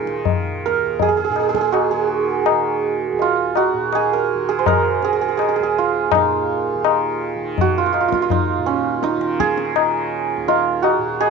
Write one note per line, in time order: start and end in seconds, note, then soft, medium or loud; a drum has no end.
0.00 0.66 D#2 medium
0.00 1.28 A#2 medium
0.00 0.05 D#3 medium
0.00 2.41 D#4 medium
0.00 1.78 F4 medium
0.00 1.02 G#4 medium
0.00 0.16 A#4 medium
0.05 1.91 D#3 medium
0.05 tabla te medium
0.25 tabla tin medium
0.25 tabla ge medium
0.66 3.12 D#2 medium
0.66 3.48 A#4 medium
1.00 1.08 G#4 medium
1.00 tabla tin medium
1.00 tabla ge medium
1.08 1.17 G#4 medium
1.17 1.24 G#4 medium
1.24 1.31 G#4 medium
1.29 3.73 A#2 medium
1.29 1.39 G#4 medium
1.36 1.49 G#4 medium
1.36 tabla na medium
1.49 1.54 G#4 medium
1.55 1.61 G#4 medium
1.55 tabla ke medium
1.61 1.90 G#4 medium
1.72 3.28 F#4 medium
1.72 tabla na medium
1.91 2.51 D#3 medium
1.91 3.95 G#4 medium
2.46 tabla na medium
2.51 4.35 D#3 medium
3.12 5.59 D#2 medium
3.19 3.63 F4 medium
3.19 tabla tin medium
3.56 5.84 F#4 medium
3.56 tabla na medium
3.73 6.13 A#2 medium
3.93 4.48 G#4 medium
3.93 tabla na medium
4.13 4.67 A#4 medium
4.35 4.97 D#3 medium
4.49 5.04 G#4 medium
4.59 7.24 C5 medium
4.66 7.50 A#4 medium
4.66 tabla na medium
4.66 tabla ge medium
4.97 6.75 D#3 medium
5.03 5.12 G#4 medium
5.03 tabla te medium
5.13 5.21 G#4 medium
5.21 5.28 G#4 medium
5.28 5.37 G#4 medium
5.37 5.41 G#4 medium
5.37 tabla na medium
5.41 5.48 G#4 soft
5.49 5.56 G#4 medium
5.56 7.96 D#2 medium
5.56 5.63 G#4 medium
5.63 8.67 G#4 medium
5.78 7.67 F4 medium
6.12 8.57 A#2 medium
6.12 8.31 D#4 medium
6.12 tabla na medium
6.12 tabla ge medium
6.75 7.35 D#3 medium
6.85 tabla na medium
7.35 9.17 D#3 medium
7.58 7.84 F#4 medium
7.58 tabla tin medium
7.58 tabla ge medium
7.78 7.86 F4 medium
7.86 7.92 F4 medium
7.93 10.36 D#2 medium
7.93 8.00 F4 medium
7.93 tabla na medium
8.01 8.08 F4 medium
8.08 8.13 F4 medium
8.12 8.22 F4 medium
8.12 tabla ke soft
8.22 10.48 F4 medium
8.30 9.03 D#4 medium
8.30 tabla tin medium
8.30 tabla ge medium
8.57 10.97 A#2 medium
8.66 11.30 C#4 medium
9.03 11.30 D#4 medium
9.03 tabla te medium
9.17 9.77 D#3 medium
9.17 tabla te medium
9.40 11.20 G#4 medium
9.40 tabla ke medium
9.58 tabla te medium
9.76 11.30 D#3 medium
9.76 tabla na medium
10.36 11.30 D#2 medium
10.48 10.88 F4 medium
10.48 tabla tin medium
10.82 11.30 F#4 medium
10.82 tabla na medium
10.98 11.30 A#2 medium
11.20 11.30 G#4 loud
11.20 tabla na medium